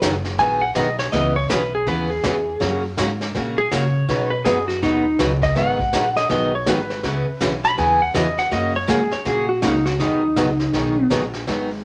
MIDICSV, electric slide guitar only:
0, 0, Header, 1, 2, 480
1, 0, Start_track
1, 0, Key_signature, 5, "major"
1, 0, Tempo, 369458
1, 1464, Time_signature, 4, 2, 24, 8
1, 15383, End_track
2, 0, Start_track
2, 0, Title_t, "Electric slide guitar"
2, 0, Program_c, 0, 29
2, 508, Note_on_c, 0, 80, 104
2, 798, Note_on_c, 0, 78, 96
2, 799, Note_off_c, 0, 80, 0
2, 975, Note_off_c, 0, 78, 0
2, 979, Note_on_c, 0, 75, 76
2, 1274, Note_off_c, 0, 75, 0
2, 1290, Note_on_c, 0, 73, 80
2, 1458, Note_on_c, 0, 75, 92
2, 1461, Note_off_c, 0, 73, 0
2, 1754, Note_off_c, 0, 75, 0
2, 1768, Note_on_c, 0, 73, 81
2, 1940, Note_off_c, 0, 73, 0
2, 1946, Note_on_c, 0, 71, 86
2, 2239, Note_off_c, 0, 71, 0
2, 2270, Note_on_c, 0, 68, 78
2, 2432, Note_off_c, 0, 68, 0
2, 2442, Note_on_c, 0, 71, 90
2, 2727, Note_off_c, 0, 71, 0
2, 2729, Note_on_c, 0, 68, 80
2, 3660, Note_off_c, 0, 68, 0
2, 4652, Note_on_c, 0, 68, 89
2, 4823, Note_off_c, 0, 68, 0
2, 4829, Note_on_c, 0, 73, 93
2, 5586, Note_off_c, 0, 73, 0
2, 5592, Note_on_c, 0, 71, 83
2, 5772, Note_off_c, 0, 71, 0
2, 5776, Note_on_c, 0, 68, 81
2, 6074, Note_off_c, 0, 68, 0
2, 6079, Note_on_c, 0, 66, 88
2, 6256, Note_off_c, 0, 66, 0
2, 6271, Note_on_c, 0, 63, 95
2, 6734, Note_off_c, 0, 63, 0
2, 7058, Note_on_c, 0, 75, 87
2, 7226, Note_off_c, 0, 75, 0
2, 7240, Note_on_c, 0, 78, 95
2, 7992, Note_off_c, 0, 78, 0
2, 8011, Note_on_c, 0, 75, 86
2, 8182, Note_off_c, 0, 75, 0
2, 8199, Note_on_c, 0, 75, 90
2, 8485, Note_off_c, 0, 75, 0
2, 8511, Note_on_c, 0, 73, 72
2, 8672, Note_off_c, 0, 73, 0
2, 8691, Note_on_c, 0, 71, 95
2, 9609, Note_off_c, 0, 71, 0
2, 9936, Note_on_c, 0, 83, 101
2, 10104, Note_off_c, 0, 83, 0
2, 10116, Note_on_c, 0, 80, 90
2, 10403, Note_off_c, 0, 80, 0
2, 10419, Note_on_c, 0, 78, 87
2, 10585, Note_off_c, 0, 78, 0
2, 10598, Note_on_c, 0, 75, 81
2, 10884, Note_off_c, 0, 75, 0
2, 10898, Note_on_c, 0, 78, 81
2, 11064, Note_off_c, 0, 78, 0
2, 11080, Note_on_c, 0, 75, 86
2, 11365, Note_off_c, 0, 75, 0
2, 11383, Note_on_c, 0, 73, 82
2, 11547, Note_off_c, 0, 73, 0
2, 11565, Note_on_c, 0, 68, 88
2, 11847, Note_off_c, 0, 68, 0
2, 11856, Note_on_c, 0, 73, 82
2, 12023, Note_off_c, 0, 73, 0
2, 12038, Note_on_c, 0, 68, 93
2, 12323, Note_off_c, 0, 68, 0
2, 12328, Note_on_c, 0, 66, 87
2, 12499, Note_off_c, 0, 66, 0
2, 12504, Note_on_c, 0, 63, 91
2, 12796, Note_off_c, 0, 63, 0
2, 12805, Note_on_c, 0, 66, 78
2, 12977, Note_off_c, 0, 66, 0
2, 12989, Note_on_c, 0, 63, 94
2, 14382, Note_off_c, 0, 63, 0
2, 15383, End_track
0, 0, End_of_file